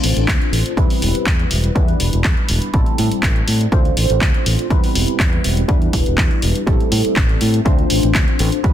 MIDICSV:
0, 0, Header, 1, 5, 480
1, 0, Start_track
1, 0, Tempo, 491803
1, 1714, Time_signature, 4, 2, 24, 8
1, 8522, End_track
2, 0, Start_track
2, 0, Title_t, "Analog polysynth"
2, 0, Program_c, 0, 90
2, 0, Note_on_c, 0, 57, 74
2, 0, Note_on_c, 0, 60, 69
2, 0, Note_on_c, 0, 62, 68
2, 0, Note_on_c, 0, 65, 69
2, 0, Note_on_c, 0, 72, 83
2, 706, Note_off_c, 0, 57, 0
2, 708, Note_off_c, 0, 60, 0
2, 709, Note_off_c, 0, 62, 0
2, 711, Note_off_c, 0, 65, 0
2, 713, Note_off_c, 0, 72, 0
2, 750, Note_on_c, 0, 55, 80
2, 753, Note_on_c, 0, 59, 74
2, 758, Note_on_c, 0, 60, 76
2, 762, Note_on_c, 0, 64, 77
2, 766, Note_on_c, 0, 71, 89
2, 1666, Note_off_c, 0, 55, 0
2, 1668, Note_off_c, 0, 59, 0
2, 1670, Note_off_c, 0, 60, 0
2, 1672, Note_off_c, 0, 64, 0
2, 1674, Note_off_c, 0, 71, 0
2, 1708, Note_on_c, 0, 55, 74
2, 1712, Note_on_c, 0, 59, 71
2, 1716, Note_on_c, 0, 62, 69
2, 1720, Note_on_c, 0, 64, 71
2, 1723, Note_on_c, 0, 71, 84
2, 2625, Note_off_c, 0, 55, 0
2, 2627, Note_off_c, 0, 59, 0
2, 2629, Note_off_c, 0, 62, 0
2, 2631, Note_off_c, 0, 64, 0
2, 2633, Note_off_c, 0, 71, 0
2, 2669, Note_on_c, 0, 55, 80
2, 2673, Note_on_c, 0, 57, 77
2, 2676, Note_on_c, 0, 60, 75
2, 2681, Note_on_c, 0, 64, 76
2, 2683, Note_on_c, 0, 69, 93
2, 3586, Note_off_c, 0, 55, 0
2, 3588, Note_off_c, 0, 57, 0
2, 3589, Note_off_c, 0, 60, 0
2, 3592, Note_off_c, 0, 64, 0
2, 3593, Note_off_c, 0, 69, 0
2, 3630, Note_on_c, 0, 57, 77
2, 3633, Note_on_c, 0, 60, 69
2, 3636, Note_on_c, 0, 62, 73
2, 3641, Note_on_c, 0, 65, 70
2, 3644, Note_on_c, 0, 72, 88
2, 4546, Note_off_c, 0, 57, 0
2, 4548, Note_off_c, 0, 60, 0
2, 4549, Note_off_c, 0, 62, 0
2, 4552, Note_off_c, 0, 65, 0
2, 4553, Note_off_c, 0, 72, 0
2, 4586, Note_on_c, 0, 55, 82
2, 4589, Note_on_c, 0, 59, 74
2, 4594, Note_on_c, 0, 60, 77
2, 4597, Note_on_c, 0, 64, 77
2, 4602, Note_on_c, 0, 71, 92
2, 5504, Note_off_c, 0, 55, 0
2, 5506, Note_off_c, 0, 59, 0
2, 5508, Note_off_c, 0, 60, 0
2, 5510, Note_off_c, 0, 64, 0
2, 5512, Note_off_c, 0, 71, 0
2, 5544, Note_on_c, 0, 55, 77
2, 5546, Note_on_c, 0, 59, 72
2, 5552, Note_on_c, 0, 62, 68
2, 5555, Note_on_c, 0, 64, 73
2, 5559, Note_on_c, 0, 71, 84
2, 6463, Note_off_c, 0, 55, 0
2, 6464, Note_off_c, 0, 59, 0
2, 6467, Note_off_c, 0, 62, 0
2, 6469, Note_off_c, 0, 64, 0
2, 6471, Note_off_c, 0, 71, 0
2, 6505, Note_on_c, 0, 55, 81
2, 6511, Note_on_c, 0, 57, 74
2, 6515, Note_on_c, 0, 60, 77
2, 6517, Note_on_c, 0, 64, 76
2, 6522, Note_on_c, 0, 69, 90
2, 7424, Note_off_c, 0, 55, 0
2, 7426, Note_off_c, 0, 57, 0
2, 7429, Note_off_c, 0, 60, 0
2, 7430, Note_off_c, 0, 64, 0
2, 7432, Note_off_c, 0, 69, 0
2, 7466, Note_on_c, 0, 57, 76
2, 7469, Note_on_c, 0, 60, 70
2, 7471, Note_on_c, 0, 62, 70
2, 7475, Note_on_c, 0, 65, 68
2, 7478, Note_on_c, 0, 72, 84
2, 8384, Note_off_c, 0, 57, 0
2, 8386, Note_off_c, 0, 60, 0
2, 8387, Note_off_c, 0, 62, 0
2, 8389, Note_off_c, 0, 65, 0
2, 8390, Note_off_c, 0, 72, 0
2, 8427, Note_on_c, 0, 55, 79
2, 8431, Note_on_c, 0, 59, 73
2, 8435, Note_on_c, 0, 60, 74
2, 8439, Note_on_c, 0, 64, 78
2, 8440, Note_on_c, 0, 71, 89
2, 8522, Note_off_c, 0, 55, 0
2, 8522, Note_off_c, 0, 59, 0
2, 8522, Note_off_c, 0, 60, 0
2, 8522, Note_off_c, 0, 64, 0
2, 8522, Note_off_c, 0, 71, 0
2, 8522, End_track
3, 0, Start_track
3, 0, Title_t, "Fingered electric bass"
3, 0, Program_c, 1, 33
3, 36, Note_on_c, 1, 33, 79
3, 123, Note_off_c, 1, 33, 0
3, 161, Note_on_c, 1, 33, 78
3, 240, Note_off_c, 1, 33, 0
3, 273, Note_on_c, 1, 38, 80
3, 361, Note_off_c, 1, 38, 0
3, 511, Note_on_c, 1, 33, 91
3, 600, Note_off_c, 1, 33, 0
3, 753, Note_on_c, 1, 40, 93
3, 841, Note_off_c, 1, 40, 0
3, 994, Note_on_c, 1, 28, 88
3, 1082, Note_off_c, 1, 28, 0
3, 1233, Note_on_c, 1, 40, 103
3, 1405, Note_off_c, 1, 40, 0
3, 1475, Note_on_c, 1, 28, 85
3, 1646, Note_off_c, 1, 28, 0
3, 1713, Note_on_c, 1, 40, 96
3, 1885, Note_off_c, 1, 40, 0
3, 1952, Note_on_c, 1, 28, 84
3, 2041, Note_off_c, 1, 28, 0
3, 2078, Note_on_c, 1, 28, 80
3, 2159, Note_off_c, 1, 28, 0
3, 2192, Note_on_c, 1, 40, 88
3, 2281, Note_off_c, 1, 40, 0
3, 2431, Note_on_c, 1, 28, 98
3, 2521, Note_off_c, 1, 28, 0
3, 2671, Note_on_c, 1, 33, 91
3, 2760, Note_off_c, 1, 33, 0
3, 2916, Note_on_c, 1, 45, 92
3, 3003, Note_off_c, 1, 45, 0
3, 3151, Note_on_c, 1, 33, 108
3, 3324, Note_off_c, 1, 33, 0
3, 3393, Note_on_c, 1, 45, 83
3, 3565, Note_off_c, 1, 45, 0
3, 3629, Note_on_c, 1, 38, 102
3, 3803, Note_off_c, 1, 38, 0
3, 3873, Note_on_c, 1, 33, 86
3, 3961, Note_off_c, 1, 33, 0
3, 4002, Note_on_c, 1, 33, 76
3, 4080, Note_off_c, 1, 33, 0
3, 4110, Note_on_c, 1, 38, 83
3, 4200, Note_off_c, 1, 38, 0
3, 4354, Note_on_c, 1, 33, 92
3, 4442, Note_off_c, 1, 33, 0
3, 4591, Note_on_c, 1, 40, 91
3, 4680, Note_off_c, 1, 40, 0
3, 4831, Note_on_c, 1, 28, 91
3, 4921, Note_off_c, 1, 28, 0
3, 5072, Note_on_c, 1, 40, 97
3, 5244, Note_off_c, 1, 40, 0
3, 5313, Note_on_c, 1, 28, 80
3, 5485, Note_off_c, 1, 28, 0
3, 5551, Note_on_c, 1, 40, 97
3, 5724, Note_off_c, 1, 40, 0
3, 5790, Note_on_c, 1, 28, 86
3, 5880, Note_off_c, 1, 28, 0
3, 5921, Note_on_c, 1, 28, 79
3, 6000, Note_off_c, 1, 28, 0
3, 6031, Note_on_c, 1, 40, 85
3, 6120, Note_off_c, 1, 40, 0
3, 6275, Note_on_c, 1, 28, 91
3, 6362, Note_off_c, 1, 28, 0
3, 6511, Note_on_c, 1, 33, 90
3, 6600, Note_off_c, 1, 33, 0
3, 6753, Note_on_c, 1, 45, 90
3, 6841, Note_off_c, 1, 45, 0
3, 6991, Note_on_c, 1, 33, 100
3, 7164, Note_off_c, 1, 33, 0
3, 7236, Note_on_c, 1, 45, 81
3, 7406, Note_off_c, 1, 45, 0
3, 7472, Note_on_c, 1, 38, 99
3, 7644, Note_off_c, 1, 38, 0
3, 7715, Note_on_c, 1, 33, 85
3, 7803, Note_off_c, 1, 33, 0
3, 7840, Note_on_c, 1, 33, 78
3, 7919, Note_off_c, 1, 33, 0
3, 7953, Note_on_c, 1, 38, 87
3, 8041, Note_off_c, 1, 38, 0
3, 8198, Note_on_c, 1, 33, 95
3, 8284, Note_off_c, 1, 33, 0
3, 8434, Note_on_c, 1, 40, 97
3, 8522, Note_off_c, 1, 40, 0
3, 8522, End_track
4, 0, Start_track
4, 0, Title_t, "Muted fingered electric bass strokes"
4, 1120, Note_on_c, 9, 29, 42
4, 1218, Note_off_c, 9, 29, 0
4, 3041, Note_on_c, 9, 29, 42
4, 3138, Note_off_c, 9, 29, 0
4, 4960, Note_on_c, 9, 29, 41
4, 5058, Note_off_c, 9, 29, 0
4, 6881, Note_on_c, 9, 29, 42
4, 6978, Note_off_c, 9, 29, 0
4, 8522, End_track
5, 0, Start_track
5, 0, Title_t, "Drums"
5, 35, Note_on_c, 9, 46, 108
5, 133, Note_off_c, 9, 46, 0
5, 162, Note_on_c, 9, 42, 55
5, 259, Note_off_c, 9, 42, 0
5, 273, Note_on_c, 9, 36, 110
5, 277, Note_on_c, 9, 39, 118
5, 278, Note_on_c, 9, 42, 52
5, 371, Note_off_c, 9, 36, 0
5, 375, Note_off_c, 9, 39, 0
5, 376, Note_off_c, 9, 42, 0
5, 405, Note_on_c, 9, 42, 25
5, 502, Note_off_c, 9, 42, 0
5, 518, Note_on_c, 9, 46, 102
5, 616, Note_off_c, 9, 46, 0
5, 642, Note_on_c, 9, 42, 50
5, 739, Note_off_c, 9, 42, 0
5, 753, Note_on_c, 9, 36, 107
5, 758, Note_on_c, 9, 42, 53
5, 851, Note_off_c, 9, 36, 0
5, 856, Note_off_c, 9, 42, 0
5, 881, Note_on_c, 9, 46, 60
5, 979, Note_off_c, 9, 46, 0
5, 997, Note_on_c, 9, 46, 101
5, 1095, Note_off_c, 9, 46, 0
5, 1122, Note_on_c, 9, 42, 52
5, 1220, Note_off_c, 9, 42, 0
5, 1234, Note_on_c, 9, 36, 114
5, 1235, Note_on_c, 9, 39, 118
5, 1236, Note_on_c, 9, 42, 54
5, 1331, Note_off_c, 9, 36, 0
5, 1333, Note_off_c, 9, 39, 0
5, 1334, Note_off_c, 9, 42, 0
5, 1362, Note_on_c, 9, 42, 27
5, 1460, Note_off_c, 9, 42, 0
5, 1471, Note_on_c, 9, 46, 101
5, 1569, Note_off_c, 9, 46, 0
5, 1598, Note_on_c, 9, 42, 51
5, 1696, Note_off_c, 9, 42, 0
5, 1713, Note_on_c, 9, 36, 116
5, 1715, Note_on_c, 9, 42, 49
5, 1811, Note_off_c, 9, 36, 0
5, 1812, Note_off_c, 9, 42, 0
5, 1839, Note_on_c, 9, 42, 26
5, 1936, Note_off_c, 9, 42, 0
5, 1951, Note_on_c, 9, 46, 111
5, 2049, Note_off_c, 9, 46, 0
5, 2078, Note_on_c, 9, 42, 54
5, 2176, Note_off_c, 9, 42, 0
5, 2189, Note_on_c, 9, 39, 116
5, 2190, Note_on_c, 9, 42, 50
5, 2193, Note_on_c, 9, 36, 119
5, 2287, Note_off_c, 9, 39, 0
5, 2288, Note_off_c, 9, 42, 0
5, 2290, Note_off_c, 9, 36, 0
5, 2316, Note_on_c, 9, 42, 24
5, 2414, Note_off_c, 9, 42, 0
5, 2426, Note_on_c, 9, 46, 109
5, 2523, Note_off_c, 9, 46, 0
5, 2555, Note_on_c, 9, 42, 52
5, 2652, Note_off_c, 9, 42, 0
5, 2670, Note_on_c, 9, 42, 50
5, 2672, Note_on_c, 9, 36, 124
5, 2768, Note_off_c, 9, 42, 0
5, 2769, Note_off_c, 9, 36, 0
5, 2795, Note_on_c, 9, 42, 26
5, 2892, Note_off_c, 9, 42, 0
5, 2912, Note_on_c, 9, 46, 97
5, 3009, Note_off_c, 9, 46, 0
5, 3040, Note_on_c, 9, 42, 54
5, 3138, Note_off_c, 9, 42, 0
5, 3152, Note_on_c, 9, 36, 118
5, 3153, Note_on_c, 9, 39, 121
5, 3154, Note_on_c, 9, 42, 54
5, 3249, Note_off_c, 9, 36, 0
5, 3251, Note_off_c, 9, 39, 0
5, 3252, Note_off_c, 9, 42, 0
5, 3278, Note_on_c, 9, 42, 27
5, 3376, Note_off_c, 9, 42, 0
5, 3392, Note_on_c, 9, 46, 106
5, 3490, Note_off_c, 9, 46, 0
5, 3522, Note_on_c, 9, 42, 50
5, 3619, Note_off_c, 9, 42, 0
5, 3631, Note_on_c, 9, 36, 123
5, 3635, Note_on_c, 9, 42, 48
5, 3729, Note_off_c, 9, 36, 0
5, 3732, Note_off_c, 9, 42, 0
5, 3760, Note_on_c, 9, 42, 23
5, 3857, Note_off_c, 9, 42, 0
5, 3874, Note_on_c, 9, 46, 111
5, 3972, Note_off_c, 9, 46, 0
5, 4000, Note_on_c, 9, 42, 50
5, 4097, Note_off_c, 9, 42, 0
5, 4111, Note_on_c, 9, 36, 124
5, 4113, Note_on_c, 9, 39, 115
5, 4114, Note_on_c, 9, 42, 46
5, 4209, Note_off_c, 9, 36, 0
5, 4211, Note_off_c, 9, 39, 0
5, 4212, Note_off_c, 9, 42, 0
5, 4240, Note_on_c, 9, 42, 23
5, 4337, Note_off_c, 9, 42, 0
5, 4355, Note_on_c, 9, 46, 109
5, 4452, Note_off_c, 9, 46, 0
5, 4480, Note_on_c, 9, 42, 50
5, 4578, Note_off_c, 9, 42, 0
5, 4591, Note_on_c, 9, 36, 118
5, 4593, Note_on_c, 9, 42, 52
5, 4689, Note_off_c, 9, 36, 0
5, 4691, Note_off_c, 9, 42, 0
5, 4720, Note_on_c, 9, 46, 65
5, 4817, Note_off_c, 9, 46, 0
5, 4836, Note_on_c, 9, 46, 107
5, 4933, Note_off_c, 9, 46, 0
5, 4960, Note_on_c, 9, 42, 50
5, 5057, Note_off_c, 9, 42, 0
5, 5071, Note_on_c, 9, 36, 123
5, 5073, Note_on_c, 9, 39, 113
5, 5075, Note_on_c, 9, 42, 50
5, 5169, Note_off_c, 9, 36, 0
5, 5171, Note_off_c, 9, 39, 0
5, 5172, Note_off_c, 9, 42, 0
5, 5199, Note_on_c, 9, 42, 25
5, 5297, Note_off_c, 9, 42, 0
5, 5312, Note_on_c, 9, 46, 105
5, 5410, Note_off_c, 9, 46, 0
5, 5438, Note_on_c, 9, 42, 50
5, 5536, Note_off_c, 9, 42, 0
5, 5550, Note_on_c, 9, 42, 51
5, 5551, Note_on_c, 9, 36, 125
5, 5648, Note_off_c, 9, 42, 0
5, 5649, Note_off_c, 9, 36, 0
5, 5677, Note_on_c, 9, 42, 24
5, 5775, Note_off_c, 9, 42, 0
5, 5791, Note_on_c, 9, 36, 62
5, 5791, Note_on_c, 9, 46, 111
5, 5888, Note_off_c, 9, 46, 0
5, 5889, Note_off_c, 9, 36, 0
5, 5916, Note_on_c, 9, 42, 49
5, 6014, Note_off_c, 9, 42, 0
5, 6030, Note_on_c, 9, 39, 105
5, 6031, Note_on_c, 9, 36, 119
5, 6031, Note_on_c, 9, 42, 48
5, 6127, Note_off_c, 9, 39, 0
5, 6129, Note_off_c, 9, 36, 0
5, 6129, Note_off_c, 9, 42, 0
5, 6157, Note_on_c, 9, 42, 23
5, 6255, Note_off_c, 9, 42, 0
5, 6269, Note_on_c, 9, 46, 102
5, 6366, Note_off_c, 9, 46, 0
5, 6398, Note_on_c, 9, 42, 47
5, 6495, Note_off_c, 9, 42, 0
5, 6511, Note_on_c, 9, 36, 122
5, 6512, Note_on_c, 9, 42, 49
5, 6609, Note_off_c, 9, 36, 0
5, 6610, Note_off_c, 9, 42, 0
5, 6641, Note_on_c, 9, 42, 24
5, 6739, Note_off_c, 9, 42, 0
5, 6752, Note_on_c, 9, 46, 106
5, 6850, Note_off_c, 9, 46, 0
5, 6878, Note_on_c, 9, 42, 48
5, 6975, Note_off_c, 9, 42, 0
5, 6990, Note_on_c, 9, 39, 117
5, 6991, Note_on_c, 9, 42, 51
5, 6992, Note_on_c, 9, 36, 123
5, 7088, Note_off_c, 9, 39, 0
5, 7089, Note_off_c, 9, 42, 0
5, 7090, Note_off_c, 9, 36, 0
5, 7118, Note_on_c, 9, 42, 24
5, 7216, Note_off_c, 9, 42, 0
5, 7231, Note_on_c, 9, 46, 106
5, 7328, Note_off_c, 9, 46, 0
5, 7358, Note_on_c, 9, 42, 49
5, 7455, Note_off_c, 9, 42, 0
5, 7473, Note_on_c, 9, 36, 120
5, 7473, Note_on_c, 9, 42, 49
5, 7570, Note_off_c, 9, 42, 0
5, 7571, Note_off_c, 9, 36, 0
5, 7599, Note_on_c, 9, 42, 24
5, 7697, Note_off_c, 9, 42, 0
5, 7711, Note_on_c, 9, 46, 105
5, 7808, Note_off_c, 9, 46, 0
5, 7839, Note_on_c, 9, 42, 46
5, 7937, Note_off_c, 9, 42, 0
5, 7951, Note_on_c, 9, 39, 104
5, 7952, Note_on_c, 9, 42, 49
5, 7953, Note_on_c, 9, 36, 118
5, 8048, Note_off_c, 9, 39, 0
5, 8049, Note_off_c, 9, 42, 0
5, 8051, Note_off_c, 9, 36, 0
5, 8079, Note_on_c, 9, 42, 24
5, 8176, Note_off_c, 9, 42, 0
5, 8191, Note_on_c, 9, 46, 102
5, 8288, Note_off_c, 9, 46, 0
5, 8319, Note_on_c, 9, 42, 48
5, 8417, Note_off_c, 9, 42, 0
5, 8434, Note_on_c, 9, 36, 116
5, 8434, Note_on_c, 9, 42, 51
5, 8522, Note_off_c, 9, 36, 0
5, 8522, Note_off_c, 9, 42, 0
5, 8522, End_track
0, 0, End_of_file